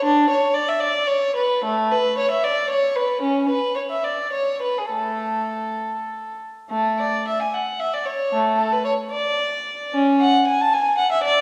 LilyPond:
\new Staff \with { instrumentName = "Violin" } { \time 6/8 \key a \major \tempo 4. = 75 << { d'8 cis''8 d''16 e''16 d''8 cis''8 b'8 | a8 b'8 cis''16 e''16 d''8 cis''8 b'8 | cis'8 b'8 cis''16 e''16 d''8 cis''8 b'16 gis'16 | a'2~ a'8 r8 |
a8 d''8 e''16 gis''16 fis''8 e''16 d''16 cis''8 | a8 a'16 b'16 cis''8 d''4. | cis'8 fis''8 gis''16 a''16 gis''8 fis''16 e''16 d''8 | } \\ { r2. | r2. | r2. | a4. r4. |
r2. | r2. | r2. | } >> }